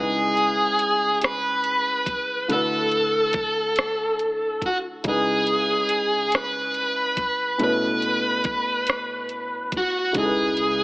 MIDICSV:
0, 0, Header, 1, 5, 480
1, 0, Start_track
1, 0, Key_signature, 4, "minor"
1, 0, Tempo, 851064
1, 1409, Time_signature, 6, 3, 24, 8
1, 6112, End_track
2, 0, Start_track
2, 0, Title_t, "Lead electric guitar"
2, 0, Program_c, 0, 29
2, 0, Note_on_c, 0, 68, 71
2, 668, Note_off_c, 0, 68, 0
2, 700, Note_on_c, 0, 71, 73
2, 1421, Note_on_c, 0, 69, 75
2, 1436, Note_off_c, 0, 71, 0
2, 2625, Note_off_c, 0, 69, 0
2, 2627, Note_on_c, 0, 66, 61
2, 2690, Note_off_c, 0, 66, 0
2, 2866, Note_on_c, 0, 68, 80
2, 3583, Note_off_c, 0, 68, 0
2, 3586, Note_on_c, 0, 71, 81
2, 4299, Note_off_c, 0, 71, 0
2, 4306, Note_on_c, 0, 71, 79
2, 5475, Note_off_c, 0, 71, 0
2, 5512, Note_on_c, 0, 66, 69
2, 5724, Note_off_c, 0, 66, 0
2, 5742, Note_on_c, 0, 68, 73
2, 6112, Note_off_c, 0, 68, 0
2, 6112, End_track
3, 0, Start_track
3, 0, Title_t, "Grand piano"
3, 0, Program_c, 1, 0
3, 0, Note_on_c, 1, 49, 43
3, 0, Note_on_c, 1, 56, 46
3, 0, Note_on_c, 1, 63, 41
3, 0, Note_on_c, 1, 64, 43
3, 0, Note_on_c, 1, 71, 53
3, 78, Control_c, 1, 64, 127
3, 1380, Note_off_c, 1, 49, 0
3, 1385, Note_off_c, 1, 56, 0
3, 1389, Note_off_c, 1, 63, 0
3, 1394, Note_off_c, 1, 64, 0
3, 1396, Note_off_c, 1, 71, 0
3, 1400, Note_on_c, 1, 50, 46
3, 1403, Note_on_c, 1, 57, 45
3, 1413, Note_on_c, 1, 64, 42
3, 1415, Control_c, 1, 64, 0
3, 1424, Note_on_c, 1, 66, 43
3, 1430, Note_on_c, 1, 71, 54
3, 1506, Control_c, 1, 64, 127
3, 2822, Note_off_c, 1, 50, 0
3, 2824, Note_off_c, 1, 57, 0
3, 2828, Note_off_c, 1, 64, 0
3, 2834, Note_off_c, 1, 66, 0
3, 2837, Note_off_c, 1, 71, 0
3, 2841, Note_on_c, 1, 49, 46
3, 2849, Note_on_c, 1, 56, 41
3, 2854, Note_on_c, 1, 63, 41
3, 2857, Control_c, 1, 64, 0
3, 2860, Note_on_c, 1, 64, 44
3, 2869, Note_on_c, 1, 71, 52
3, 2949, Control_c, 1, 64, 127
3, 4262, Note_off_c, 1, 49, 0
3, 4266, Note_off_c, 1, 56, 0
3, 4269, Note_off_c, 1, 63, 0
3, 4272, Note_off_c, 1, 64, 0
3, 4276, Note_off_c, 1, 71, 0
3, 4276, Note_on_c, 1, 47, 49
3, 4282, Note_on_c, 1, 57, 43
3, 4292, Note_on_c, 1, 61, 45
3, 4295, Control_c, 1, 64, 0
3, 4301, Note_on_c, 1, 64, 46
3, 4308, Note_on_c, 1, 71, 57
3, 4390, Control_c, 1, 64, 127
3, 5700, Note_off_c, 1, 47, 0
3, 5703, Note_off_c, 1, 57, 0
3, 5708, Note_off_c, 1, 61, 0
3, 5712, Note_off_c, 1, 64, 0
3, 5712, Note_on_c, 1, 49, 49
3, 5716, Note_off_c, 1, 71, 0
3, 5723, Note_on_c, 1, 56, 42
3, 5729, Note_on_c, 1, 63, 42
3, 5737, Control_c, 1, 64, 0
3, 5739, Note_on_c, 1, 64, 46
3, 5747, Note_on_c, 1, 69, 44
3, 5775, Note_off_c, 1, 69, 0
3, 5781, Note_on_c, 1, 71, 54
3, 5831, Control_c, 1, 64, 127
3, 6112, Note_off_c, 1, 49, 0
3, 6112, Note_off_c, 1, 56, 0
3, 6112, Note_off_c, 1, 63, 0
3, 6112, Note_off_c, 1, 64, 0
3, 6112, Note_off_c, 1, 71, 0
3, 6112, End_track
4, 0, Start_track
4, 0, Title_t, "Fingered electric bass"
4, 0, Program_c, 2, 33
4, 5726, Note_on_c, 2, 37, 80
4, 6112, Note_off_c, 2, 37, 0
4, 6112, End_track
5, 0, Start_track
5, 0, Title_t, "Drums"
5, 209, Note_on_c, 9, 42, 35
5, 265, Note_off_c, 9, 42, 0
5, 446, Note_on_c, 9, 42, 45
5, 502, Note_off_c, 9, 42, 0
5, 685, Note_on_c, 9, 42, 54
5, 701, Note_on_c, 9, 37, 83
5, 742, Note_off_c, 9, 42, 0
5, 758, Note_off_c, 9, 37, 0
5, 924, Note_on_c, 9, 42, 36
5, 980, Note_off_c, 9, 42, 0
5, 1163, Note_on_c, 9, 36, 64
5, 1166, Note_on_c, 9, 42, 53
5, 1220, Note_off_c, 9, 36, 0
5, 1222, Note_off_c, 9, 42, 0
5, 1407, Note_on_c, 9, 42, 66
5, 1464, Note_off_c, 9, 42, 0
5, 1644, Note_on_c, 9, 42, 36
5, 1700, Note_off_c, 9, 42, 0
5, 1878, Note_on_c, 9, 42, 45
5, 1884, Note_on_c, 9, 36, 85
5, 1934, Note_off_c, 9, 42, 0
5, 1941, Note_off_c, 9, 36, 0
5, 2119, Note_on_c, 9, 42, 57
5, 2135, Note_on_c, 9, 37, 84
5, 2176, Note_off_c, 9, 42, 0
5, 2192, Note_off_c, 9, 37, 0
5, 2365, Note_on_c, 9, 42, 39
5, 2421, Note_off_c, 9, 42, 0
5, 2603, Note_on_c, 9, 36, 62
5, 2606, Note_on_c, 9, 42, 49
5, 2660, Note_off_c, 9, 36, 0
5, 2662, Note_off_c, 9, 42, 0
5, 2842, Note_on_c, 9, 42, 62
5, 2846, Note_on_c, 9, 36, 85
5, 2899, Note_off_c, 9, 42, 0
5, 2902, Note_off_c, 9, 36, 0
5, 3083, Note_on_c, 9, 42, 39
5, 3140, Note_off_c, 9, 42, 0
5, 3322, Note_on_c, 9, 42, 44
5, 3378, Note_off_c, 9, 42, 0
5, 3564, Note_on_c, 9, 42, 57
5, 3580, Note_on_c, 9, 37, 84
5, 3621, Note_off_c, 9, 42, 0
5, 3637, Note_off_c, 9, 37, 0
5, 3803, Note_on_c, 9, 42, 33
5, 3859, Note_off_c, 9, 42, 0
5, 4043, Note_on_c, 9, 36, 64
5, 4043, Note_on_c, 9, 42, 44
5, 4099, Note_off_c, 9, 36, 0
5, 4100, Note_off_c, 9, 42, 0
5, 4283, Note_on_c, 9, 42, 60
5, 4340, Note_off_c, 9, 42, 0
5, 4524, Note_on_c, 9, 42, 36
5, 4581, Note_off_c, 9, 42, 0
5, 4760, Note_on_c, 9, 42, 43
5, 4765, Note_on_c, 9, 36, 83
5, 4817, Note_off_c, 9, 42, 0
5, 4821, Note_off_c, 9, 36, 0
5, 5001, Note_on_c, 9, 42, 57
5, 5017, Note_on_c, 9, 37, 83
5, 5057, Note_off_c, 9, 42, 0
5, 5073, Note_off_c, 9, 37, 0
5, 5240, Note_on_c, 9, 42, 33
5, 5296, Note_off_c, 9, 42, 0
5, 5482, Note_on_c, 9, 36, 64
5, 5482, Note_on_c, 9, 42, 46
5, 5539, Note_off_c, 9, 36, 0
5, 5539, Note_off_c, 9, 42, 0
5, 5722, Note_on_c, 9, 42, 60
5, 5724, Note_on_c, 9, 36, 87
5, 5778, Note_off_c, 9, 42, 0
5, 5780, Note_off_c, 9, 36, 0
5, 5961, Note_on_c, 9, 42, 39
5, 6017, Note_off_c, 9, 42, 0
5, 6112, End_track
0, 0, End_of_file